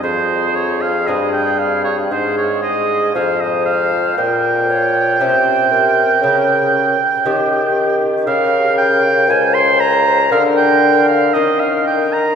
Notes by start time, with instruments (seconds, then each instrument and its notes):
0.03 bassoon F2, lute F2, recorder G#4, oboe C5
0.55 oboe C#5
0.81 oboe F5
1.07 bassoon G2, lute G2 G#3 C4 G#4, oboe D#5
1.33 oboe G5
1.59 oboe F5
1.84 oboe C#5
2.11 bassoon G#2, lute G#2, oboe C5
2.37 oboe C#5
2.63 oboe D#5
3.14 bassoon F2, lute F2 C4 G#4, recorder C5, oboe F5
3.40 oboe D#5
3.66 oboe F5
4.17 bassoon A#2, lute A#2, recorder A#4, oboe G5
4.69 recorder C#5
5.19 bassoon C3, lute C3 C#4 G4, recorder C5
5.71 recorder A#4
6.21 bassoon C#3, lute C#3
7.25 bassoon D#3, lute D#3 C#4 G4, recorder G4
8.27 lute C#3, bassoon C#3, recorder A#4, oboe F5
8.78 oboe G5
9.29 bassoon C#2, lute A#3 A#4, recorder C5, oboe G#5
9.54 oboe C6
9.80 oboe A#5
10.31 bassoon D3, lute D3 G#3 A#3 A#4, recorder A#4, oboe F5
10.57 oboe G5
11.08 oboe F5
11.34 bassoon D#3, lute D#3 C#4 A#4, recorder A#4, oboe D#5
11.60 oboe F5
11.87 oboe G5
12.13 oboe A#5